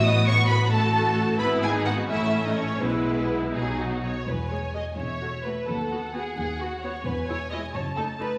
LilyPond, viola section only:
\new Staff \with { instrumentName = "Viola section" } { \time 6/8 \key e \major \tempo 4. = 87 << { fis'4. fis'4. | e'8. dis'8. cis'4. | e'4. dis'4 r8 | r8 gis'8 gis'8 r8 fis'8 fis'8 |
r8 fis'8 fis'8 r8 fis'8 fis'8 | r8 e'8 e'8 r8 dis'8 dis'8 | } \\ { b4. a4. | b4. a4. | gis4. fis4 r8 | r8 gis8 gis8 r8 a8 a8 |
r8 b8 b8 r8 b8 b8 | r8 gis8 gis8 r8 a8 a8 | } >> }